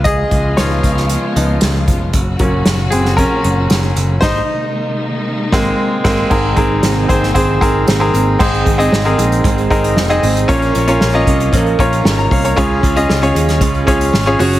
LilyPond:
<<
  \new Staff \with { instrumentName = "Grand piano" } { \time 4/4 \key aes \mixolydian \tempo 4 = 115 << { <aes' ees''>4 <f' des''>2 r4 | r4. <c' aes'>8 <des' bes'>4. r8 | r1 | r1 |
r1 | r2. r16 bes''16 <des'' f''>16 <bes' des''>16~ | <bes' des''>16 r2. r8. | } \\ { r1 | r1 | <ees' c''>8 r2 <aes bes c'>8 r8 <aes bes c'>8 | <c' aes' bes'>8 <c' aes' bes'>4 <c' aes' c''>8 <c' aes' c''>8 <c' aes' bes'>8. <c' aes' bes'>8. |
<c' ees' aes' c''>8. <c' ees' aes' ees''>8 <c' ees' aes' bes'>4 r16 <c' ees' aes' bes'>8. <c' ees' aes' ees''>8. | <des' f' bes' des''>8. <des' f' bes' des''>8 <des' f' bes' ees''>4 r16 <des' f' bes' des''>8. r8. | <des' f' aes' des''>8. <des' f' aes' ees''>8 <des' f' aes' des''>4 r16 <des' f' aes' des''>8. <des' f' aes' des''>16 <des' ges' aes' des''>8 | } >> }
  \new Staff \with { instrumentName = "Grand piano" } { \clef bass \time 4/4 \key aes \mixolydian r4 <f ces' ees'>8 r4 <f ces' ees'>8 r4 | r8 <ges bes des'>2.~ <ges bes des'>8 | r1 | aes,4. r2 r8 |
aes,4. r2 r8 | bes,4. r2 r8 | des4. r2 r8 | }
  \new Staff \with { instrumentName = "Steel-string acoustic guitar" } { \time 4/4 \key aes \mixolydian r1 | r1 | r1 | <aes, ees bes c' ees' aes'>8 <bes c' ees' aes'>8 <aes, ees bes c' ees' aes'>8 <bes c' ees' aes'>8 <bes c' ees' aes'>8 <bes c' ees' aes'>8 <aes, ees bes c' ees' aes'>8 <bes c' ees' aes'>8 |
<aes, ees aes c' ees' aes'>8 <aes c' ees' aes'>8 <aes c' ees' aes'>8 <aes c' ees' aes'>8 <aes, ees aes c' ees' aes'>8 <aes c' ees' aes'>8 <aes c' ees' aes'>8 <aes c' ees' aes'>8 | <bes, f bes des' f' bes'>8 <bes des' f' bes'>8 <bes des' f' bes'>8 <bes des' f' bes'>8 <bes, f bes des' f' bes'>8 <bes des' f' bes'>8 <bes des' f' bes'>8 <bes des' f' bes'>8 | <des aes des' f' aes'>8 <des' f' aes'>8 <aes des' f' aes'>8 <des' f' aes'>8 <des aes des' f' aes'>8 <des' f' aes'>8 <aes des' f' aes'>8 <des' ges' aes'>8 | }
  \new Staff \with { instrumentName = "String section" } { \clef bass \time 4/4 \key aes \mixolydian << { <aes ces' f'>1 | <bes, ges des' ges'>1 | <c aes bes ees'>1 | <c aes bes ees'>1 |
r1 | r1 | r1 | } \\ { <des f>1~ | <des f>1 | ees1 | ees1 |
r1 | r1 | r1 | } >> }
  \new Staff \with { instrumentName = "Picked electric bass" } { \clef bass \time 4/4 \key aes \mixolydian des,8 des,8 des,8 des,8. r16 des,8 des,8 f,,8 | ges,,8 ges,,8 ges,,8 ges,,8. r16 ges,,8 ges,,8 ges,,8 | aes,,8 r2 aes,,8 r8 aes,,8 | aes,,8 aes,,8 aes,,8 aes,,8 aes,,8 aes,,8 aes,,8 aes,,8 |
aes,,8 aes,,8 aes,,8 bes,,8 aes,,8 aes,,8 f,,8 aes,,8 | bes,,8 bes,,8 bes,,8 c,8 bes,,8 bes,,8 aes,,8 c,8 | des,8 des,8 des,8 ees,8 des,8 des,8 aes,,8 ges,,8 | }
  \new DrumStaff \with { instrumentName = "Drums" } \drummode { \time 4/4 <hh bd>8 <hh bd>8 <hh sn>8 <hh bd>16 sn16 hh8 hh8 <hh sn>8 <hh bd>8 | <hh bd>8 <hh bd>8 <hh sn>8 hh16 sn16 <hh bd>8 hh8 <hh sn>8 hh8 | <cymc bd sn>4 r4 r8 <bd sn>8 r8 <cymc bd sn>8 | <cymc bd>8 <hh bd>8 <hh sn>8 <hh bd>16 sn16 <hh bd>8 <hh bd>8 <hh sn>8 hh8 |
<cymc bd>16 hh16 <hh bd>16 hh16 sn16 hh16 hh16 hh16 <hh bd>16 hh16 <hh bd>16 hh16 sn16 hh16 hho16 hh16 | <hh bd>16 hh16 hh16 hh16 sn8 <hh bd>16 hh16 <hh bd>16 hh16 <hh bd>16 hh16 sn8 <hho bd>16 hh16 | <hh bd>8 <hh bd>16 hh16 sn16 hh16 hh16 <hh sn>16 <hh bd>16 hh16 <hh bd>16 hh16 sn8 hho16 hh16 | }
>>